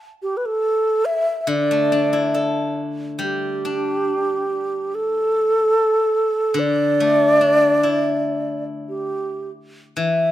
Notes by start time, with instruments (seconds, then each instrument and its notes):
0.22 xiao G4
0.37 xiao B4
0.46 xiao A4
1.05 xiao E5
1.41 xiao E5
1.47 guzheng D3, xiao D5
1.71 guzheng A3
1.92 guzheng D4
2.13 guzheng E4
2.34 guzheng A4
3.19 guzheng G3, xiao G4
3.65 guzheng D4
4.95 xiao A4
6.54 guzheng D3
6.59 xiao D5
7.00 guzheng A3
7.41 guzheng D4
7.83 guzheng E4
8.89 xiao G4
9.97 guzheng E3, xiao E5